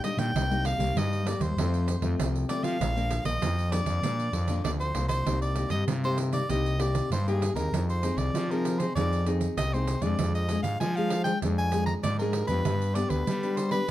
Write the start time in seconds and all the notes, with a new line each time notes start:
Already playing: A#2
0.04 G3 D4 D#4 D#5, pandeiro
0.17 A#2 G5, pandeiro
0.35 C2 C3 G3 A#3 D#4, pandeiro
0.50 G3 A#3 D#4, pandeiro
0.65 F5, pandeiro
0.78 C2 G3 A#3 D#4, pandeiro
0.95 G2 D#5, pandeiro
1.13 pandeiro
1.26 G3 A#3 D#4 D5, pandeiro
1.40 D#2 C5, pandeiro
1.57 F2 F3 A3 C4, pandeiro
1.74 pandeiro
1.88 pandeiro
2.01 F2 F3 A3 C4, pandeiro
2.19 C2 C3, pandeiro
2.36 pandeiro
2.49 F3 A3 C4 D5, pandeiro
2.63 F3 F5, pandeiro
2.80 A#1 A#2 F3 A#3 D4, pandeiro
2.96 F3 A#3 D4, pandeiro
3.11 pandeiro
3.25 A#1 F3 A#3 D#5, pandeiro
3.42 F2, pandeiro
3.59 pandeiro
3.71 F3 A#3 D4 D5, pandeiro
3.86 F2, pandeiro
4.03 A#2 F3 A#3 D4, pandeiro
4.20 pandeiro
4.33 F2, pandeiro
4.48 F3 A#3 D4, pandeiro
4.64 D2 F2 D5, pandeiro
4.80 C5, pandeiro
4.95 C2 F3 A#3 D4, pandeiro
5.08 C5, pandeiro
5.26 C2 C3 A#3 D#4 G4, pandeiro
5.42 D5, pandeiro
5.56 A#3 D#4 G4, pandeiro
5.70 G2 D#5, pandeiro
5.87 G2 C3, pandeiro
6.04 A#3 D#4 G4 C5, pandeiro
6.18 pandeiro
6.32 A#3 D#4 G4 D5, pandeiro
6.48 C2 C3 A#3 D#4 G4 D#5, pandeiro
6.66 pandeiro
6.79 A#3 D#4 G4 D5, pandeiro
6.95 pandeiro
7.11 G2 C5, pandeiro
7.27 A#3 D#4 G4 G#4, pandeiro
7.42 pandeiro
7.55 D#2 C4 D#4 G#4 A#4, pandeiro
7.72 F2 F3, pandeiro
7.90 C5, pandeiro
8.03 C4 D#4 G#4, pandeiro
8.17 C2 D5, pandeiro
8.34 C3 F3, pandeiro
8.51 C4 D#4 G#4 A#4, pandeiro
8.65 pandeiro
8.79 C4 D#4 G#4 C5, pandeiro
8.95 F2 F3 C4 D#4 G#4 D5, pandeiro
9.13 pandeiro
9.26 C4 D#4 G#4, pandeiro
9.41 pandeiro
9.57 C2 C3 D#5, pandeiro
9.74 C4 D#4 G#4 C5, pandeiro
9.87 pandeiro
10.02 F2 G#3 D4 G#4 D5, pandeiro
10.19 F2 F3, pandeiro
10.35 D#5, pandeiro
10.49 G#3 D4 G#4, pandeiro
10.63 G#2 F5, pandeiro
10.80 F3 G#5, pandeiro
10.96 G#3 D4 G#4 F5, pandeiro
11.10 pandeiro
11.24 G#3 D4 G#4 G5, pandeiro
11.42 F2 F3 G#3 D4 G#4, pandeiro
11.58 G#5, pandeiro
11.72 G#3 D4 G#4, pandeiro
11.86 A#5, pandeiro
12.03 G#2 F3 D5, pandeiro
12.19 G#3 D4 G#4 A#4, pandeiro
12.33 pandeiro
12.47 F2 B3 D4 G4 B4, pandeiro
12.65 G2 G3, pandeiro
12.82 pandeiro
12.95 B3 D4 G4 D5, pandeiro
13.10 D2 B4, pandeiro
13.27 D3 G3, pandeiro
13.43 B3 D4 G4, pandeiro
13.57 C5, pandeiro
13.71 B3 D4 G4 B4, pandeiro